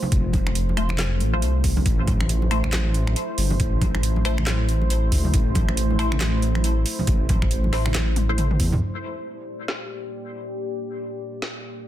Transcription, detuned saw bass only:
0.12 0.45 F1 loud
0.47 1.22 F1 medium
1.21 1.44 A1 medium
1.42 1.85 C2 medium
1.86 3.15 A1 loud
3.38 3.58 G1 medium
3.60 3.93 A1 loud
3.94 5.11 A1 medium
5.12 5.32 D2 medium
5.34 5.67 A1 loud
5.68 6.85 A1 medium
7.07 7.41 A1 loud
7.42 8.59 A1 medium
8.60 8.80 E2 loud

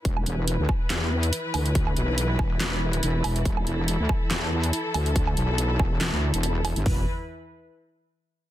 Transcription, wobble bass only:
0.05 0.25 E1 medium
0.26 0.57 E1 medium
0.59 0.67 D2 loud
0.90 1.31 E2 loud
1.54 1.95 D2 loud
1.97 2.38 B1 loud
2.39 2.83 E1 medium
2.83 3.01 D#1 medium
3.03 3.23 E1 loud
3.24 3.44 E1 loud
3.45 3.65 E1 loud
3.67 3.98 E1 medium
4.00 4.08 D2 loud
4.31 4.72 E2 loud
4.94 5.35 D2 loud
5.37 5.78 B1 loud
5.80 6.11 E1 medium
6.12 6.32 D2 loud
6.34 6.74 E1 loud
6.76 6.84 G1 medium
6.86 7.06 E1 loud

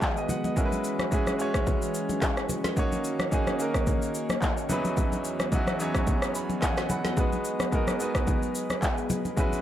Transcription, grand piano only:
0.00 0.56 G#3 medium
0.00 0.59 B3 medium
0.00 0.59 D#4 medium
0.00 0.58 F#4 medium
0.00 0.58 A#4 medium
0.00 0.59 B4 medium
0.17 0.29 D#5 medium
0.30 0.44 F#5 medium
0.45 0.71 D#5 medium
0.56 1.01 G#3 medium
0.56 1.02 C#4 medium
0.56 1.02 E4 medium
0.56 1.03 F#4 medium
0.56 0.65 A#4 medium
0.65 1.06 B4 medium
1.11 1.34 G#3 medium
1.11 1.34 C#4 medium
1.11 1.35 E4 medium
1.11 1.35 F#4 medium
1.11 1.36 G#4 medium
1.38 2.27 G#3 medium
1.38 2.28 C#4 medium
1.38 2.28 E4 medium
1.38 2.29 F#4 medium
1.38 2.29 C#5 medium
2.76 3.22 A#3 medium
2.76 3.22 C#4 medium
2.76 3.22 D#4 medium
2.76 3.23 F#4 medium
2.76 3.23 C#5 medium
3.31 3.54 A#3 medium
3.31 3.54 C#4 medium
3.31 3.55 D#4 medium
3.31 3.55 F#4 medium
3.31 3.56 G#4 medium
3.59 4.48 A#3 medium
3.59 4.48 C#4 medium
3.59 4.48 D#4 medium
3.59 4.49 F#4 medium
3.59 4.49 A#4 medium
4.69 5.36 E2 medium
4.69 5.37 F#3 medium
4.69 5.37 C#4 medium
4.69 5.37 D#4 medium
4.69 5.38 E4 medium
4.69 5.38 B4 loud
5.51 5.74 E2 medium
5.51 5.75 F#3 medium
5.51 5.75 C#4 medium
5.51 5.75 D#4 medium
5.51 5.76 E4 medium
5.51 5.76 F#4 medium
5.79 6.68 E2 medium
5.79 6.68 F#3 medium
5.79 6.68 C#4 medium
5.79 6.69 D#4 medium
5.79 6.69 E4 medium
5.79 6.69 C#5 medium
6.35 6.61 B5 medium
6.63 6.77 F#5 medium
6.63 6.77 G#5 medium
6.78 6.90 G#5 medium
6.90 7.04 F#5 medium
6.90 7.05 B5 medium
7.06 7.31 F#5 medium
7.16 7.62 G#3 medium
7.16 7.62 B3 medium
7.16 7.63 D#4 medium
7.16 7.63 F#4 medium
7.16 7.64 B4 medium
7.71 7.94 G#3 medium
7.71 7.95 B3 medium
7.71 7.95 D#4 medium
7.71 7.96 F#4 medium
7.71 7.96 A#4 medium
7.99 8.88 G#3 medium
7.99 8.88 B3 medium
7.99 8.89 D#4 medium
7.99 8.89 F#4 medium
7.99 8.90 B4 medium
9.37 9.62 G#3 medium
9.37 9.62 C#4 medium
9.37 9.62 E4 medium
9.37 9.62 F#4 medium
9.37 9.62 B4 medium

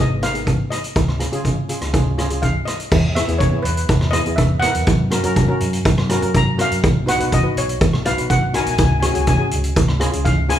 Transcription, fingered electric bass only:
0.00 0.60 G#1 medium
0.96 1.24 C#2 medium
1.33 1.70 C#3 medium
1.81 2.57 C#2 medium
2.92 3.20 E2 medium
3.28 3.47 E2 medium
3.64 3.83 E2 loud
3.89 4.17 E2 loud
4.26 4.63 E2 medium
4.75 4.84 E2 loud
4.87 5.16 F#2 medium
5.24 5.43 F#2 medium
5.61 5.79 F#2 medium
5.85 6.13 F#2 loud
6.21 6.59 F#2 medium
6.71 6.80 F#2 medium
6.84 7.11 B1 medium
7.19 7.38 B1 loud
7.56 7.75 B1 medium
7.82 8.09 B1 loud
8.17 8.55 B1 medium
8.66 8.75 B1 loud
8.79 9.07 C#2 medium
9.16 9.34 C#2 loud
9.52 9.71 C#2 loud
9.76 10.04 C#2 loud
10.14 10.51 C#2 medium

